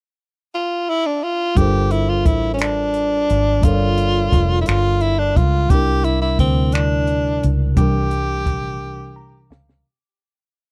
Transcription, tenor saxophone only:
0.55 F4
0.89 E4
1.06 D4
1.23 F4
1.58 G4
1.92 E4
2.09 F4
2.26 E4
2.54 C#4
2.61 D4
3.64 F4
4.62 E4
4.67 F4
5.01 E4
5.19 D4
5.37 F4
5.71 G4
6.05 E4
6.22 E4
6.40 C4
6.74 D4
7.77 G4

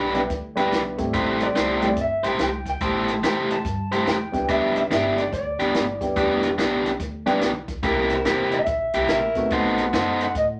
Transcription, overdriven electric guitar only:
Already playing: E3 D4 G4 B4
0.57 E3 D4 G4 B4
1.14 A3 E4 G4 C5
1.55 A3 E4 G4 C5
2.24 A3 E4 G4 C5
2.81 A3 E4 G4 C5
3.23 A3 E4 G4 C5
3.92 A3 E4 G4 C5
4.49 E3 B3 D4 G4
4.91 E3 B3 D4 G4
5.60 E3 B3 D4 G4
6.16 E3 B3 D4 G4
6.58 E3 B3 D4 G4
7.27 E3 B3 D4 G4
7.83 C3 A#3 E4 G4
8.26 C3 A#3 E4 G4
8.94 C3 A#3 E4 G4
9.52 B3 D#4 A4 C5
9.93 B3 D#4 A4 C5

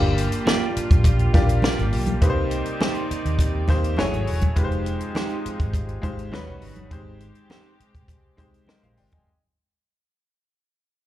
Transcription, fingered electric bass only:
Already playing: G1
0.77 muted fingered electric bass stroke
0.91 A#1
1.35 A#1
1.79 G#1
1.93 B1
2.22 C2
3.11 muted fingered electric bass stroke
3.25 D#2
3.69 D#2
3.98 F#1
4.13 G#1
4.28 E1
4.57 F1
5.46 muted fingered electric bass stroke
5.60 G#1
6.04 G#1
6.34 D#2
6.48 B1
6.63 G1
6.92 G#1
7.80 muted fingered electric bass stroke
7.95 C2
8.39 C2
8.83 A#1
8.98 G1

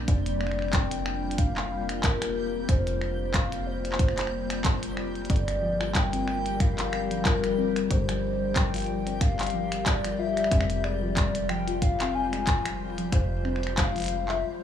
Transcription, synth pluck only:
5.62 F3
5.81 F4
6.13 C4
6.46 G3
6.60 F3
7.11 F3
7.25 F4
7.58 C4
7.91 G3
8.09 F3
8.56 F3
8.74 F4
9.07 C4
9.39 G3
9.54 F3
10.04 F3
10.19 F4
10.51 C4
10.84 G#3
11.02 F3
11.49 F3
11.68 F4
12.00 C4
12.33 G#3
12.47 F3
12.98 F3
13.12 F4
13.45 C4
13.78 G#3
13.96 F3

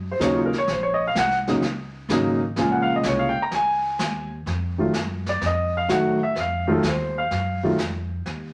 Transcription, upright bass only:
Already playing: F#2
0.19 D#2
0.68 A#1
1.15 C2
1.62 C#2
2.09 G#1
2.56 A#1
3.04 C2
3.37 muted upright bass stroke
3.51 C#2
3.99 D#2
4.46 F2
4.94 F#2
5.41 F2
5.89 A2
6.35 F2
6.83 D#2
7.31 F#2
7.78 F2
8.26 D#2

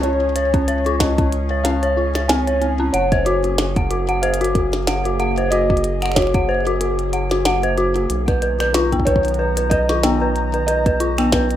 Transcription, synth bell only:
0.04 C#4
0.36 C#5
0.54 C#4
0.68 C#5
0.86 F4
1.00 C#4
1.18 C#4
1.51 C#5
1.65 C#4
1.83 C#5
1.97 F4
2.15 C#5
2.29 C4
2.47 C#5
2.62 C4
2.80 C#4
2.94 F#5
3.12 C5
3.26 F#4
3.44 F#4
3.77 F#5
3.91 F#4
4.09 F#5
4.23 C5
4.41 F#4
4.55 F#4
4.87 F#5
5.06 F#4
5.20 F#5
5.38 C5
5.52 F#4
5.70 F#4
6.02 F#5
6.16 F#4
6.35 F#5
6.49 C5
6.67 F#4
6.81 F#4
7.13 F#5
7.31 F#4
7.45 F#5
7.63 C5
7.78 F#4
7.96 F#4
8.28 B4
8.42 B4
8.60 B4
8.75 F4
8.93 B3
9.07 B4
9.39 B4
9.57 B4
9.71 B4
9.89 F4
10.04 B3
10.22 B4
10.54 B4
10.68 B4
10.86 B4
11.00 F4
11.18 B3
11.33 B4

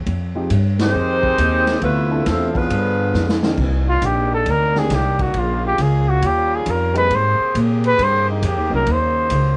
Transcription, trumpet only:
3.89 F4
4.05 G4
4.34 A4
4.50 A#4
4.78 G#4
4.95 G4
5.21 F#4
5.38 F4
5.67 G4
5.82 G#4
6.09 F#4
6.26 G4
6.55 G#4
6.70 A#4
6.97 B4
7.15 C5
7.86 B4
8.03 C5
8.30 D#4
8.47 G4
8.75 A#4
8.92 C5

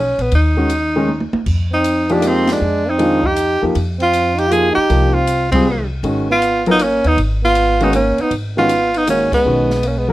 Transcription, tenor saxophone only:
Already playing: C#4
0.21 B3
0.35 D#4
1.74 D#4
2.12 D4
2.27 C4
2.52 D4
2.90 D#4
3.26 G4
4.02 F4
4.39 G4
4.52 G#4
4.75 G4
5.14 F4
5.52 C4
6.32 F4
6.71 D#4
6.83 C#4
7.08 D#4
7.45 F4
7.83 D#4
7.96 C#4
8.22 D#4
8.59 F4
8.97 D#4
9.10 C#4
9.34 B3
9.87 C#4
9.98 B3

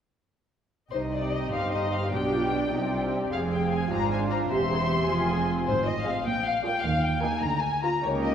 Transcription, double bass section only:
0.92 C2
1.52 G1
2.13 B1
2.73 C2
3.32 F1
3.92 G#1
4.51 E1
5.08 F1
5.67 G#1
6.25 A#1
6.84 D#2
7.42 D2
8.02 C#2

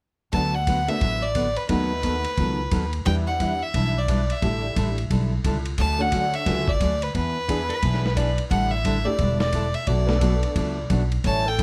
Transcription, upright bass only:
0.33 D2
1.01 A1
1.69 D#2
2.38 C#2
2.72 D#2
3.06 E2
3.74 B1
4.42 A1
4.76 A1
5.11 B1
5.45 C#2
5.78 D2
6.46 C#2
6.80 D2
7.15 E2
7.83 B1
8.51 A1
9.19 E1
9.87 B1
10.56 C#2
10.90 B1
11.24 A1

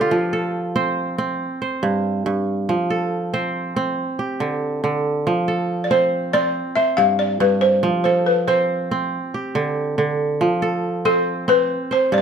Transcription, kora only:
Already playing: D3 G4 A4 B4
0.01 F4
0.11 F3
0.33 A4
0.76 C4 C5
1.18 C4
1.62 C5
1.83 G2
2.26 G2
2.69 F3
2.90 A4
3.33 C4 C5
3.76 C4
4.19 G4
4.40 D3
4.84 D3
5.27 F3
5.48 A4
5.91 C4 C5
6.34 C4
6.76 C5
6.98 G2
7.40 G2
7.83 F3
8.05 A4
8.48 C4 C5
8.91 C4
9.34 G4
9.55 D3
9.98 D3
10.41 F3
10.62 A4
11.05 C4 C5
11.48 C4
11.91 C5
12.12 G2

